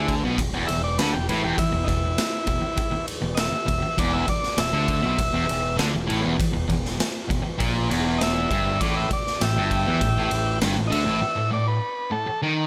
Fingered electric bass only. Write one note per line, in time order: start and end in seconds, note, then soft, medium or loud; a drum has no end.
0.00 0.22 D2 medium
0.24 0.37 B1 medium
0.38 0.52 E1 medium
0.53 0.68 E1 medium
0.69 0.97 E1 medium
1.00 1.14 D2 medium
1.14 1.28 E1 medium
1.29 1.42 A1 loud
1.43 1.57 E1 medium
1.57 muted fingered electric bass stroke soft
1.74 1.87 E1 medium
1.88 2.17 E1 medium
2.47 2.62 E1 medium
2.64 muted fingered electric bass stroke soft
2.78 muted fingered electric bass stroke soft
2.95 muted fingered electric bass stroke soft
3.24 3.52 E1 medium
3.52 muted fingered electric bass stroke soft
3.69 3.83 E1 medium
3.85 muted fingered electric bass stroke soft
3.97 4.27 E1 loud
4.58 4.73 E1 medium
4.73 5.02 D2 medium
5.04 5.18 B1 medium
5.19 5.34 E1 medium
5.34 5.49 E1 medium
5.50 5.78 E1 medium
5.80 5.94 D2 loud
5.96 6.09 E1 medium
6.10 6.24 A1 medium
6.26 6.39 E1 medium
6.40 muted fingered electric bass stroke soft
6.55 6.69 E1 medium
6.69 6.98 E1 medium
7.30 7.44 E1 medium
7.45 muted fingered electric bass stroke soft
7.60 7.89 A#1 medium
7.92 8.48 E1 medium
8.51 8.79 G1 loud
8.80 9.09 A1 loud
9.11 muted fingered electric bass stroke soft
9.42 9.56 A1 medium
9.56 9.85 G1 medium
9.87 10.01 E2 loud
10.01 10.15 A1 medium
10.16 10.30 A1 medium
10.33 10.60 A1 medium
10.62 10.76 G1 medium
10.77 10.91 A1 medium
10.92 11.06 D2 loud
11.07 11.21 A1 medium